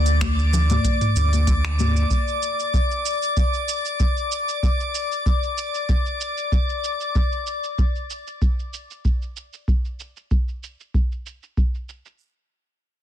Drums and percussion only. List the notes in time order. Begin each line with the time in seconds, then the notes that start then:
0.06 closed hi-hat, cabasa
0.21 finger snap, kick, closed hi-hat, high conga, cabasa
0.39 cabasa
0.53 low conga, cabasa
0.70 closed hi-hat, mid tom, high conga, cabasa
0.84 kick, closed hi-hat, cabasa
1.01 closed hi-hat, mid tom, cabasa
1.16 cabasa
1.33 closed hi-hat, high conga, cabasa
1.47 kick, closed hi-hat, cabasa
1.65 finger snap, closed hi-hat, cabasa
1.79 mid tom, high conga, cabasa
1.96 cabasa
2.11 kick, cabasa
2.28 cabasa
2.43 cabasa
2.59 cabasa
2.74 kick, cabasa
2.91 cabasa
3.06 cabasa
3.22 cabasa
3.37 kick, cabasa
3.54 cabasa
3.69 cabasa
3.85 cabasa
4.00 kick, cabasa
4.17 cabasa
4.32 cabasa
4.49 cabasa
4.63 kick, cabasa
4.80 cabasa
4.95 cabasa
5.12 cabasa
5.26 kick, cabasa
5.43 cabasa
5.58 cabasa
5.74 cabasa
5.89 kick, cabasa
6.06 cabasa
6.21 cabasa
6.38 cabasa
6.52 kick, cabasa
6.69 cabasa
6.84 cabasa
7.01 cabasa
7.15 kick, cabasa
7.32 cabasa
7.47 cabasa
7.64 cabasa
7.79 kick, cabasa
7.96 cabasa
8.10 cabasa
8.27 cabasa
8.42 kick, cabasa
8.59 cabasa
8.74 cabasa
8.91 cabasa
9.05 kick, cabasa
9.22 cabasa
9.37 cabasa
9.53 cabasa
9.68 kick, cabasa
9.85 cabasa
10.00 cabasa
10.17 cabasa
10.31 kick, cabasa
10.48 cabasa
10.63 cabasa
10.80 cabasa
10.94 kick, cabasa
11.12 cabasa
11.26 cabasa
11.43 cabasa
11.57 kick, cabasa
11.75 cabasa
11.89 cabasa
12.06 cabasa